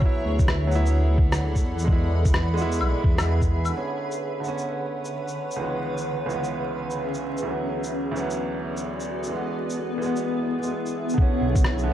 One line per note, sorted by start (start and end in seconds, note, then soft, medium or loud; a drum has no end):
0.00 0.66 F#3 medium
0.00 0.69 B3 medium
0.00 1.86 A4 medium
0.00 1.86 D5 medium
0.00 1.86 F#5 medium
0.00 3.70 B5 medium
0.00 kick loud
0.05 0.71 E4 medium
0.25 1.17 D2 loud
0.39 kick loud
0.39 shaker medium
0.48 cross-stick loud
0.67 1.84 F#3 medium
0.71 1.86 B3 medium
0.71 shaker soft
0.75 1.88 E4 loud
0.86 shaker medium
1.18 1.63 D2 medium
1.18 kick loud
1.32 cross-stick medium
1.32 shaker medium
1.56 kick medium
1.56 shaker soft
1.64 2.10 E2 medium
1.79 shaker medium
1.84 2.52 G#3 medium
1.84 2.56 B3 medium
1.84 3.72 G#4 medium
1.84 3.71 B4 medium
1.84 3.72 E5 medium
1.84 kick loud
1.92 2.58 E4 medium
2.11 2.82 E2 loud
2.25 kick loud
2.25 shaker medium
2.34 cross-stick loud
2.54 3.13 G#3 medium
2.54 3.16 B3 medium
2.54 shaker soft
2.62 3.18 E4 loud
2.72 shaker medium
2.81 2.94 B1 medium
2.81 claves medium
3.04 3.73 E2 medium
3.04 kick loud
3.15 3.70 G#3 medium
3.15 3.72 B3 medium
3.15 cross-stick medium
3.15 claves medium
3.15 shaker medium
3.22 3.74 E4 medium
3.42 kick medium
3.42 shaker soft
3.65 claves medium
3.65 shaker medium
3.70 4.38 D3 medium
3.74 5.58 D3 medium
3.74 4.41 B3 medium
3.74 4.43 C#4 medium
3.74 7.43 B4 medium
3.74 5.58 C#5 medium
3.74 5.59 F#5 medium
4.11 shaker soft
4.40 5.56 D3 medium
4.44 5.58 B3 medium
4.44 shaker soft
4.48 5.60 C#4 medium
4.58 shaker soft
5.05 shaker medium
5.28 shaker soft
5.51 shaker soft
5.56 6.24 C#2 medium
5.56 6.27 E3 medium
5.56 7.44 C#4 medium
5.56 7.44 G#4 medium
5.56 7.44 E5 medium
5.61 6.28 G#3 medium
5.61 6.30 B3 medium
5.97 shaker soft
6.26 7.42 C#2 medium
6.26 7.43 E3 medium
6.26 shaker soft
6.31 7.44 G#3 medium
6.31 7.46 B3 medium
6.44 shaker soft
6.90 shaker soft
7.14 shaker soft
7.37 shaker medium
7.43 8.10 D2 medium
7.43 8.13 E3 medium
7.43 11.14 B3 medium
7.43 9.30 F#4 medium
7.43 9.30 A4 medium
7.43 9.30 D5 medium
7.48 8.15 F#3 medium
7.48 8.16 B3 medium
7.84 shaker medium
8.11 9.28 D2 medium
8.11 9.26 E3 medium
8.16 9.30 F#3 medium
8.16 9.32 B3 loud
8.16 shaker soft
8.30 shaker soft
8.77 shaker soft
9.00 shaker soft
9.23 shaker medium
9.28 9.96 E3 medium
9.32 9.99 G#3 medium
9.32 11.17 E4 medium
9.32 11.16 G#4 medium
9.32 11.16 E5 medium
9.36 10.01 B3 medium
9.70 shaker soft
9.98 10.58 E3 medium
10.02 10.60 G#3 medium
10.02 10.62 B3 loud
10.02 shaker soft
10.16 shaker medium
10.59 11.14 E3 medium
10.59 shaker soft
10.63 11.16 G#3 medium
10.63 11.17 B3 medium
10.86 shaker soft
11.09 shaker soft
11.14 11.82 D3 medium
11.14 11.93 D3 medium
11.14 11.93 B4 medium
11.14 11.93 C#5 medium
11.14 11.93 F#5 medium
11.18 11.86 B3 medium
11.18 kick loud
11.22 11.88 C#4 medium
11.41 11.93 B1 loud
11.56 kick loud
11.56 shaker medium
11.64 cross-stick loud
11.79 shaker soft
11.83 11.93 D3 medium
11.83 11.93 B3 medium